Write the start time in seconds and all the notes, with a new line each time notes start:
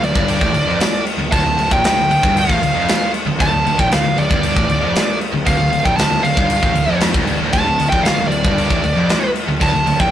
0.01 D1 D2 D5, crash
0.14 G1 G2, kick
0.28 crash
0.40 A1 A2, kick
0.53 D1 D2, crash
0.66 F1 F2
0.80 snare, crash
1.07 crash
1.17 D1 D2
1.31 D1 D2 A5, kick, crash
1.44 D1 D2
1.58 D1 D2, crash
1.71 A#1 A#2 G5, kick
1.84 D1 D2, snare, crash
1.97 D1 D2
2.10 D1 D2 G5, crash
2.23 G1 G2, kick
2.37 F5, crash
2.47 A1 A2, kick
2.61 D1 D2, crash
2.74 F1 F2
2.88 snare, crash
3.14 crash
3.26 D1 D2
3.38 D1 D2 A5, kick, crash
3.52 D1 D2
3.65 D1 D2, crash
3.78 A#1 A#2 G5, kick
3.91 D1 D2 F5, snare, crash
4.04 D1 D2
4.17 D1 D2 D5, crash
4.30 G1 G2, kick
4.43 crash
4.55 A1 A2, kick
4.67 D1 D2, crash
4.81 F1 F2
4.95 snare, crash
5.21 crash
5.33 D1 D2
5.46 D1 D2 F5, kick, crash
5.59 D1 D2
5.71 D1 D2, crash
5.83 A#1 A#2 G5, kick
5.97 D1 D2 A5, snare, crash
6.10 D1 D2
6.22 D1 D2 F5, crash
6.36 G1 G2, kick
6.50 crash
6.62 A1 A2, kick
6.75 D1 D2, crash
6.88 F1 F2
7.00 snare, crash
7.14 D1 D2, kick
7.27 G1 G2, crash
7.41 D1 D2
7.53 D1 D2 A5, kick, crash
7.66 D1 D2
7.79 D1 D2, crash
7.89 A#1 G5, kick
7.94 A#2
8.03 D1 D2 F5, snare, crash
8.16 D1 D2
8.20 D2
8.28 D1 D2 D5, crash
8.44 G1 G2, kick
8.58 crash
8.70 A1 A2, kick
8.83 D1 D2, crash
8.95 F1 F2
9.09 snare, crash
9.36 crash
9.47 D1 D2
9.60 D1 D2 A5, kick, crash
9.73 D1 D2
9.87 D1 D2, crash
10.00 A#1 A#2 G5, kick